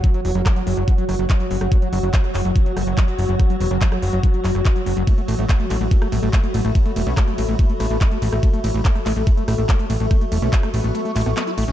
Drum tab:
RD |----------------|----------------|----------------|x-x-x-x-x-x-x-x-|
HH |xxo-xxo-xxoxxxox|xxoxxxoxxxoxxxox|xxoxxxoxxxoxxxox|xxoxxxoxxxo-xxox|
CP |----x-------x---|----x-x-----x---|----x-----x-x---|----x-x-----x---|
SD |----r-----r----r|-----r----r-----|r----r-----r----|----r----r-----r|
BD |o---o---o---o---|o---o---o---o---|o---o---o---o---|o---o---o---o---|

RD |x-x-x-x-x-x-x-x-|x-x-x-x-x-x-x-x-|x-x-x-x-x-x-x-x-|
HH |xxoxxxoxxxoxxxox|xxoxxxoxxxoxxxox|xxoxxxoxxxoxxxo-|
CP |----x-------x---|----x-x-----x---|----x-----x-x---|
SD |----r-----r----r|-----r----r-----|r----r-----r----|
BD |o---o---o---o---|o---o---o---o---|o---o-----------|